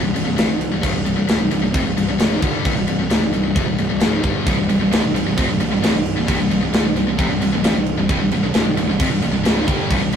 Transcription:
0.03 C1 C2 G2
0.16 C1 C2 G2, crash
0.26 C1 C2 G2
0.38 C1 C2 G2, snare, crash
0.49 C1 C2 G2
0.61 crash
0.71 C1 C2 G2
0.83 C1 C2 G2, kick, crash
0.94 C1 C2 G2
1.05 C1 C2 G2, crash
1.16 C1 C2 G2
1.28 C#1 C#2 G#2, snare, crash
1.40 C1 C2 G2
1.51 C1 C2 G2, crash
1.61 C1 C2 G2
1.72 F1 F2 C3, kick, crash
1.83 C1 C2 G2
1.96 C1 C2 G2, crash
2.08 C1 C2 G2
2.19 C#1 C#2 G#2 C#3, snare, crash
2.42 G1 G2 D3 G3, kick, crash
2.64 C1 C2 G2, kick, crash
2.76 C1 C2 G2
2.87 C1 C2 G2, crash
2.99 C1 C2 G2
3.10 C#1 C#2 G#2, snare, crash
3.22 C1 C2 G2
3.33 C1 C2 G2, crash
3.46 C1 C2 G2
3.56 F1 F2 C3, kick, crash
3.68 C1 C2 G2
3.78 C1 C2 G2, crash
3.90 C1 C2 G2
4.00 C#1 C#2 G#2 C#3, snare, crash
4.23 G1 G2 D3 G3, kick, crash
4.46 C1 C2 G2, kick, crash
4.58 C1 C2 G2
4.69 C1 C2 G2, crash
4.81 C1 C2 G2
4.92 C#1 C#2 G#2, snare, crash
5.03 C1 C2 G2
5.14 C1 C2 G2, crash
5.26 C1 C2 G2
5.37 F1 F2 C3, kick, crash
5.48 C1 C2 G2
5.59 C1 C2 G2, crash
5.71 C1 C2 G2
5.81 C1 C2 G2, snare, crash
5.93 C1 C2 G2
6.06 crash
6.16 C1 C2 G2
6.27 C1 C2 G2, kick, crash
6.39 C1 C2 G2
6.50 C1 C2 G2, crash
6.62 C1 C2 G2
6.72 C#1 C#2 G#2, snare, crash
6.84 C1 C2 G2
6.95 C1 C2 G2, crash
7.07 C1 C2 G2
7.18 F1 F2 C3, kick, crash
7.29 C1 C2 G2
7.41 C1 C2 G2, crash
7.53 C1 C2 G2
7.63 C1 C2 G2, snare, crash
7.75 C1 C2 G2
7.86 crash
7.98 C1 C2 G2
8.09 C1 C2 G2, kick, crash
8.21 C1 C2 G2
8.31 C1 C2 G2, crash
8.43 C1 C2 G2
8.54 C#1 C#2 G#2, snare, crash
8.67 C1 C2 G2
8.77 C1 C2 G2, crash
8.88 C1 C2 G2
8.99 F1 F2 C3, kick, crash
9.10 C1 C2 G2
9.22 C1 C2 G2, crash
9.34 C1 C2 G2
9.45 C#1 C#2 G#2 C#3, snare, crash
9.67 G1 G2 D3 G3, kick, crash
9.90 C1 C2 G2, kick, crash
10.01 C1 C2 G2
10.12 crash

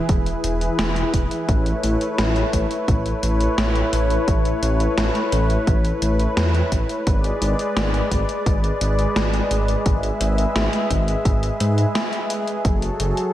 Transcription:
Already playing: E3 E4 G#4 B4
0.09 E1, kick, closed hi-hat
0.26 closed hi-hat
0.44 E1, closed hi-hat
0.61 closed hi-hat
0.79 E1, snare, closed hi-hat
0.96 closed hi-hat
1.14 E1, kick, closed hi-hat
1.31 closed hi-hat
1.49 A1 A3 C#5, kick, closed hi-hat
1.66 closed hi-hat
1.83 A1, closed hi-hat
2.01 closed hi-hat
2.18 A1, snare, closed hi-hat
2.36 closed hi-hat
2.53 A1, kick, closed hi-hat
2.71 closed hi-hat
2.88 A1, kick, closed hi-hat
3.06 closed hi-hat
3.23 A1, closed hi-hat
3.41 closed hi-hat
3.58 A1, snare, closed hi-hat
3.75 closed hi-hat
3.93 A1, closed hi-hat
4.10 closed hi-hat
4.28 A1, kick, closed hi-hat
4.45 closed hi-hat
4.62 A1, closed hi-hat
4.80 closed hi-hat
4.97 A1, snare, closed hi-hat
5.15 snare, closed hi-hat
5.32 A1, closed hi-hat
5.50 closed hi-hat
5.67 A1, kick, closed hi-hat
5.85 closed hi-hat
6.02 A1, closed hi-hat
6.20 closed hi-hat
6.37 E2, snare, closed hi-hat
6.55 closed hi-hat
6.72 A1, kick, closed hi-hat
6.89 closed hi-hat
7.07 G#1 G#3 G#4 D5, kick, closed hi-hat
7.24 closed hi-hat
7.41 G#1, closed hi-hat
7.59 closed hi-hat
7.76 G#1, snare, closed hi-hat
7.94 closed hi-hat
8.11 G#1, kick, closed hi-hat
8.29 closed hi-hat
8.46 G#1, kick, closed hi-hat
8.64 closed hi-hat
8.81 G#1, closed hi-hat
8.99 closed hi-hat
9.16 G#1, snare, closed hi-hat
9.34 closed hi-hat
9.51 G#1, closed hi-hat
9.68 closed hi-hat
9.86 G#1 E5, kick, closed hi-hat
10.03 closed hi-hat
10.21 G#1, closed hi-hat
10.38 closed hi-hat
10.55 G#1, snare, closed hi-hat
10.73 snare, closed hi-hat
10.90 G#1, kick, closed hi-hat
11.08 closed hi-hat
11.25 G#1, kick, closed hi-hat
11.43 closed hi-hat
11.60 G#2, closed hi-hat
11.78 closed hi-hat
11.95 snare, closed hi-hat
12.13 closed hi-hat
12.30 closed hi-hat
12.48 closed hi-hat
12.65 F#1 F#3 F#4 A4, kick, closed hi-hat
12.82 closed hi-hat
13.00 F#1, closed hi-hat
13.17 closed hi-hat

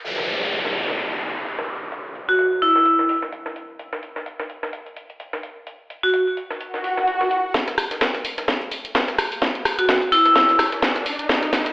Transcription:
0.04 closed hi-hat, downlifter
0.18 snare
0.28 closed hi-hat
0.41 snare
0.51 closed hi-hat
0.65 snare
0.75 closed hi-hat
0.88 snare
0.98 closed hi-hat
1.12 closed hi-hat
1.22 closed hi-hat
1.35 closed hi-hat
1.45 closed hi-hat
1.58 snare
1.69 closed hi-hat
1.92 closed hi-hat
2.15 closed hi-hat
2.29 F#4
2.39 closed hi-hat
2.62 E4, closed hi-hat
2.76 snare
2.86 closed hi-hat
2.99 snare
3.09 open hi-hat
3.22 snare
3.32 closed hi-hat
3.46 snare
3.56 closed hi-hat
3.79 closed hi-hat
3.93 snare
4.03 closed hi-hat
4.16 snare
4.26 closed hi-hat
4.40 snare
4.50 closed hi-hat
4.63 snare
4.73 closed hi-hat
4.86 closed hi-hat
4.96 closed hi-hat
5.10 closed hi-hat
5.20 closed hi-hat
5.33 snare
5.43 closed hi-hat
5.67 closed hi-hat
5.90 closed hi-hat
6.04 F#4
6.14 closed hi-hat
6.37 closed hi-hat
6.50 snare
6.61 closed hi-hat, swell
6.74 snare
6.84 open hi-hat
6.97 snare
7.07 closed hi-hat
7.21 snare
7.31 closed hi-hat
7.54 kick, snare, closed hi-hat, riser
7.68 snare, closed hi-hat
7.78 cross-stick, closed hi-hat, open hi-hat
7.91 snare, closed hi-hat
8.01 kick, snare, closed hi-hat
8.15 snare, closed hi-hat
8.25 closed hi-hat, open hi-hat
8.38 snare, closed hi-hat
8.48 kick, snare, closed hi-hat
8.61 closed hi-hat
8.71 closed hi-hat, open hi-hat
8.85 closed hi-hat
8.95 kick, snare, closed hi-hat
9.08 snare, closed hi-hat
9.18 cross-stick, closed hi-hat, open hi-hat
9.32 open hi-hat
9.42 kick, snare, closed hi-hat
9.55 closed hi-hat
9.65 cross-stick, closed hi-hat, open hi-hat
9.79 F#4, closed hi-hat
9.89 kick, snare, closed hi-hat
10.02 closed hi-hat
10.12 E4, closed hi-hat, open hi-hat
10.26 snare, closed hi-hat
10.36 kick, snare, closed hi-hat
10.49 snare, closed hi-hat
10.59 kick, cross-stick, open hi-hat
10.72 snare, closed hi-hat
10.82 kick, snare, closed hi-hat, open hi-hat
10.96 snare, closed hi-hat
11.06 closed hi-hat, open hi-hat
11.19 closed hi-hat
11.29 kick, snare, closed hi-hat
11.43 snare, closed hi-hat
11.53 snare, closed hi-hat, open hi-hat
11.66 snare, closed hi-hat

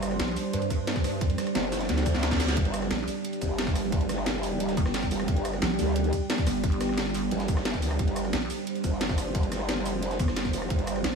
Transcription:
Already playing: G1 G3 D4 C5
0.03 cross-stick, closed hi-hat, ride, cabasa
0.11 cross-stick, ride
0.19 A#1, snare, closed hi-hat, ride
0.28 ride
0.36 open hi-hat, ride, cabasa
0.53 G2, closed hi-hat, ride
0.62 closed hi-hat, cabasa
0.70 kick, closed hi-hat, ride, cabasa
0.87 snare, closed hi-hat, ride
0.96 kick, snare, cabasa
1.04 G2, cross-stick, open hi-hat, ride, cabasa
1.21 kick, closed hi-hat, ride
1.30 closed hi-hat
1.38 cross-stick, snare, closed hi-hat, ride, cabasa
1.47 cross-stick, closed hi-hat
1.55 G1, snare, closed hi-hat, ride
1.72 snare, open hi-hat, ride, cabasa
1.81 snare, closed hi-hat, ride
1.89 D2, snare, closed hi-hat, ride, reverse cymbal
1.98 snare, closed hi-hat, cabasa
2.06 kick, closed hi-hat, ride, cabasa
2.14 snare
2.23 snare, closed hi-hat, ride
2.31 kick, snare, ride, cabasa
2.40 snare, open hi-hat, ride, cabasa
2.48 snare, ride
2.57 G1 G4, kick, closed hi-hat, ride
2.65 closed hi-hat
2.74 cross-stick, closed hi-hat, ride, cabasa
2.82 cross-stick, ride
2.91 A#1, snare, closed hi-hat, ride
2.99 ride
3.08 open hi-hat, ride, cabasa
3.24 closed hi-hat, ride
3.33 closed hi-hat, cabasa
3.41 G1, kick, closed hi-hat, ride, cabasa
3.58 snare, closed hi-hat, ride
3.67 kick, snare, cabasa
3.75 cross-stick, open hi-hat, ride, cabasa
3.92 kick, closed hi-hat, ride
4.01 closed hi-hat
4.09 cross-stick, snare, closed hi-hat, ride, cabasa
4.18 cross-stick
4.26 snare, closed hi-hat, ride
4.38 F1
4.43 open hi-hat, ride, cabasa
4.60 closed hi-hat, ride
4.69 snare, closed hi-hat, cabasa
4.77 G1, kick, closed hi-hat, ride, cabasa
4.86 cross-stick, snare
4.94 snare, closed hi-hat, ride
5.03 kick, snare, cabasa
5.11 F1, open hi-hat, ride, cabasa
5.20 cross-stick, ride
5.28 G1, kick, closed hi-hat, ride
5.37 closed hi-hat
5.45 cross-stick, closed hi-hat, ride, cabasa
5.53 cross-stick, ride
5.62 A#1, snare, closed hi-hat, ride
5.70 ride
5.79 D2, open hi-hat, ride, cabasa
5.96 closed hi-hat, ride
6.04 closed hi-hat, cabasa
6.13 kick, closed hi-hat, ride, cabasa
6.30 snare, closed hi-hat, ride
6.38 kick, snare, cabasa
6.47 G1, cross-stick, open hi-hat, ride, cabasa
6.64 kick, closed hi-hat, ride
6.72 closed hi-hat
6.81 cross-stick, snare, closed hi-hat, ride, cabasa
6.89 cross-stick
6.97 snare, closed hi-hat, ride
7.14 open hi-hat, ride, cabasa
7.31 G1, closed hi-hat, ride
7.40 snare, closed hi-hat, cabasa
7.48 kick, closed hi-hat, ride, cabasa
7.57 cross-stick, snare
7.65 snare, closed hi-hat, ride
7.74 kick, snare, cabasa
7.82 D2, open hi-hat, ride, cabasa
7.91 cross-stick, ride
7.99 G1 C5, kick, closed hi-hat, ride
8.08 closed hi-hat
8.16 cross-stick, closed hi-hat, ride, cabasa
8.25 cross-stick, ride
8.33 A#1, snare, closed hi-hat, ride
8.42 ride
8.50 open hi-hat, ride, cabasa
8.67 closed hi-hat, ride
8.75 closed hi-hat, cabasa
8.84 G1, kick, closed hi-hat, ride, cabasa
9.01 snare, closed hi-hat, ride
9.09 kick, snare, cabasa
9.18 cross-stick, open hi-hat, ride, cabasa
9.35 kick, closed hi-hat, ride
9.43 closed hi-hat
9.52 cross-stick, snare, closed hi-hat, ride, cabasa
9.60 cross-stick
9.69 snare, closed hi-hat, ride
9.78 F#1
9.86 open hi-hat, ride, cabasa
10.03 F1, closed hi-hat, ride
10.11 snare, closed hi-hat, cabasa
10.19 G1, kick, closed hi-hat, ride, cabasa
10.28 cross-stick, snare
10.36 snare, closed hi-hat, ride
10.45 kick, snare, cabasa
10.53 F1, open hi-hat, ride, cabasa
10.62 cross-stick, ride
10.70 G1, kick, closed hi-hat, ride
10.79 closed hi-hat
10.87 cross-stick, closed hi-hat, ride, cabasa
10.96 cross-stick, ride
11.04 A#1, snare, closed hi-hat, ride

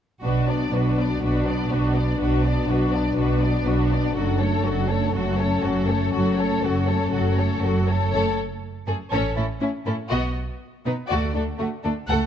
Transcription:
0.23 B1 B2 F#3 D4 F#4 B4
0.48 B3 D4 D5
0.73 B1 B2 D4 F#4 B4
0.98 B3 D4 D5
1.21 B1 B2 D4 F#4 B4
1.47 B3 D4 D5
1.71 B1 B2 D4 F#4 B4
1.96 B3 D4 D5
2.19 B1 B2 D4 F#4 B4
2.44 B3 D4 D5
2.68 B1 B2 D4 F#4 B4
2.92 B3 D4 D5
3.17 B1 B2 D4 F#4 B4
3.41 B3 D4 D5
3.65 B1 B2 D4 F#4 B4
3.90 B3 D4 D5
4.14 F#1 F#2 F#3 A3 F#4 A4
4.39 A3 A4 C#5
4.63 F#1 F#2 F#3 F#4 A4
4.88 A3 A4 C#5
5.13 F#1 F#2 F#3 C#4 F#4 A4
5.38 A3 A4 C#5
5.63 F#1 F#2 F#3 F#4 A4
5.88 A3 A4 C#5
6.12 F#1 F#2 F#3 F#4 A4
6.37 A3 A4 C#5
6.62 F#1 F#2 F#3 F#4 A4
6.86 A3 A4 C#5
7.11 F#1 F#2 F#3 F#4 A4
7.37 A3 A4 C#5
7.61 F#1 F#2 F#3 F#4 A4
7.87 A3 A4 C#5
8.12 F#1 F#2 A3 A4 C#5
8.87 F#2 A3 G#4 A4
9.12 A1 A2 C#4 A4 C#5
9.36 A2 C#4 E4 A4
9.61 A2 C#4 E4
9.86 A2 C#4 E4 A4
10.10 B1 B2 B3 F#4 D#5
10.85 B2 B3 D#4 B4
11.09 D2 A3 F#4 D5
11.34 D2 A3 D4 A4
11.58 D2 A3 F#4
11.83 D2 A3 D4 A4
12.08 C#2 A3 A4 F#5

